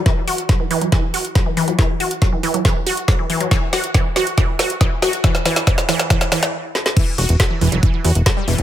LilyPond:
<<
  \new Staff \with { instrumentName = "Synth arpeggio sound" } { \clef bass \time 4/4 \key d \mixolydian \tempo 4 = 139 e16 r16 fis'16 r16 fis16 e16 e16 fis16 e16 r16 fis'16 r16 fis16 e16 e16 fis16 | e16 r16 fis'16 r16 fis16 e16 e16 fis16 e16 r16 fis'16 r16 fis16 e16 e16 fis16 | e16 r16 fis'16 r16 e16 r16 fis'16 r16 e16 r16 fis'16 r16 e16 r16 fis'16 r16 | e16 r16 e16 r16 e16 r16 e16 r16 e16 r16 e16 r4 r16 |
e16 r16 fis'16 r16 fis16 e16 e16 fis16 e16 e16 fis'16 r16 fis16 g16 e16 r16 | }
  \new Staff \with { instrumentName = "Analog synth bass" } { \clef bass \time 4/4 \key d \mixolydian r1 | r1 | r1 | r1 |
r8 e,,16 e,,16 r8 e,,16 e,,16 r8 e,16 e,,16 r8 e,,16 e,,16 | }
  \new DrumStaff \with { instrumentName = "Drums" } \drummode { \time 4/4 <hh bd sn>8 hho16 hh16 <hh bd sn>8 hho16 hh16 <hh bd sn>8 hho16 hh16 <hh bd sn>8 hho16 hh16 | <hh bd sn>8 hho16 hh16 <hh bd sn>8 hho16 hh16 <hh bd sn>8 hho16 hh16 <hh bd sn>8 hho16 hh16 | <hh bd sn>8 <hho sn>16 hh16 <hh bd sn>8 <hho sn>16 hh16 <hh bd sn>8 <hho sn>16 hh16 <hh bd sn>8 <hho sn>16 hh16 | <hh bd sn>16 sn16 <hho sn>16 <hh sn>16 <hh bd sn>16 sn16 <hho sn>16 <hh sn>16 <hh bd sn>16 sn16 <hho sn>16 <hh sn>16 r8 sn16 sn16 |
<cymc hh bd>8 hho16 hh16 <hh bd sn>8 hho16 hh16 <hh bd>8 hho16 hh16 <hh bd sn>8 hho16 hh16 | }
>>